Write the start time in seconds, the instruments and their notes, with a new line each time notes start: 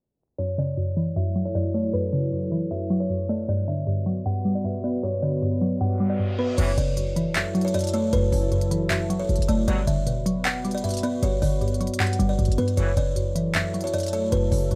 0.38 synth pluck F#2, analog synth pad F#3 E4 A4, kalimba C#5
0.58 synth pluck C#3, kalimba D5
0.77 synth pluck F#2
0.97 synth pluck E3
1.16 synth pluck F#2, kalimba E5
1.35 synth pluck F#3
1.45 kalimba C#5
1.55 synth pluck F#2, kalimba D5
1.74 synth pluck A3, kalimba C#5
1.94 synth pluck F#2, kalimba B4
2.13 synth pluck C#3, kalimba C#5
2.32 synth pluck F#2
2.52 synth pluck E3
2.71 synth pluck F#2, kalimba E5
2.90 synth pluck F#3
3.00 kalimba C#5
3.10 synth pluck F#2
3.29 synth pluck A3, kalimba D5
3.48 synth pluck G2, analog synth pad B3 F#4 B4, kalimba D5
3.68 synth pluck D3, kalimba E5
3.87 synth pluck G2
4.06 synth pluck F#3
4.26 synth pluck G2, kalimba F#5
4.45 synth pluck G3
4.55 kalimba D5
4.64 synth pluck G2, kalimba E5
4.84 synth pluck B3, kalimba D5
5.03 synth pluck G2, kalimba C#5
5.22 synth pluck D3, kalimba D5
5.42 synth pluck G2
5.61 synth pluck F#3
5.81 synth pluck G2, kalimba F#5, reverse cymbal
6.00 synth pluck G3
6.10 kalimba D5
6.19 synth pluck G2
6.39 synth pluck B3, kalimba B4
6.58 808-style bass F#1, synth pluck F#2, brass ensemble A2 C#3 E3, analog synth pad F#3 E4 A4, kalimba C#5, closed hi-hat, crash
6.77 808-style bass F#1, synth pluck C#3, kalimba D5, closed hi-hat
6.97 synth pluck F#2, closed hi-hat
7.16 synth pluck E3, closed hi-hat
7.26 808-style bass E1
7.35 808-style bass F#1, synth pluck F#2, kalimba E5, clap, closed hi-hat
7.55 synth pluck F#3, closed hi-hat
7.61 kalimba C#5, closed hi-hat
7.68 closed hi-hat
7.74 synth pluck F#2, kalimba D5, closed hi-hat
7.79 closed hi-hat
7.81 closed hi-hat
7.84 closed hi-hat
7.87 closed hi-hat
7.89 closed hi-hat
7.94 synth pluck A3, kalimba C#5, closed hi-hat
8.13 808-style bass F#1, synth pluck F#2, kalimba B4, closed hi-hat
8.32 808-style bass F#1, synth pluck C#3, kalimba C#5, open hi-hat
8.52 synth pluck F#2, closed hi-hat
8.61 closed hi-hat
8.71 synth pluck E3, closed hi-hat
8.90 synth pluck F#2, kalimba E5, clap, closed hi-hat
9.10 synth pluck F#3, closed hi-hat
9.19 kalimba C#5
9.29 808-style bass F#1, synth pluck F#2, closed hi-hat
9.36 808-style bass F#1, closed hi-hat
9.42 closed hi-hat
9.48 808-style bass F#1, synth pluck A3, kalimba D5, closed hi-hat
9.68 808-style bass G1, brass ensemble B2 D3 F#3, synth pluck G3, analog synth pad B3 F#4 B4, kalimba D5, closed hi-hat
9.87 808-style bass F#1, synth pluck D3, kalimba E5, closed hi-hat
10.07 synth pluck B2, closed hi-hat
10.26 synth pluck F#3, closed hi-hat
10.45 kalimba F#5, clap, closed hi-hat
10.65 synth pluck G3, closed hi-hat
10.71 kalimba D5, closed hi-hat
10.78 closed hi-hat
10.84 synth pluck G2, kalimba E5, closed hi-hat
10.89 closed hi-hat
10.90 closed hi-hat
10.94 closed hi-hat
10.97 closed hi-hat
10.98 closed hi-hat
11.03 synth pluck B3, kalimba D5, closed hi-hat
11.23 808-style bass G1, synth pluck G2, kalimba C#5, closed hi-hat
11.42 808-style bass G1, synth pluck D3, kalimba D5, open hi-hat
11.61 synth pluck G2, closed hi-hat
11.68 closed hi-hat
11.74 closed hi-hat
11.81 synth pluck F#3, closed hi-hat
11.87 closed hi-hat
11.94 closed hi-hat
12.00 synth pluck G2, kalimba F#5, clap, closed hi-hat
12.07 closed hi-hat
12.13 closed hi-hat
12.19 808-style bass G1, synth pluck G3, closed hi-hat
12.29 kalimba D5
12.39 808-style bass G1, synth pluck G2, closed hi-hat
12.45 808-style bass G1, closed hi-hat
12.52 closed hi-hat
12.58 808-style bass G2, synth pluck B3, kalimba B4, closed hi-hat
12.68 closed hi-hat
12.77 808-style bass F#1, synth pluck F#2, brass ensemble A2 C#3 E3, analog synth pad F#3 E4 A4, kalimba C#5, closed hi-hat
12.97 808-style bass F#1, synth pluck C#3, kalimba D5, closed hi-hat
13.16 synth pluck F#2, closed hi-hat
13.35 synth pluck E3, closed hi-hat
13.45 808-style bass E1
13.54 808-style bass F#1, synth pluck F#2, kalimba E5, clap, closed hi-hat
13.74 synth pluck F#3, closed hi-hat
13.81 kalimba C#5, closed hi-hat
13.87 closed hi-hat
13.93 synth pluck F#2, kalimba D5, closed hi-hat
13.98 closed hi-hat
14.00 closed hi-hat
14.03 closed hi-hat
14.06 closed hi-hat
14.08 closed hi-hat
14.13 synth pluck A3, kalimba C#5, closed hi-hat
14.32 808-style bass F#1, synth pluck F#2, kalimba B4, closed hi-hat
14.51 808-style bass F#1, synth pluck C#3, kalimba C#5, open hi-hat
14.71 synth pluck F#2, closed hi-hat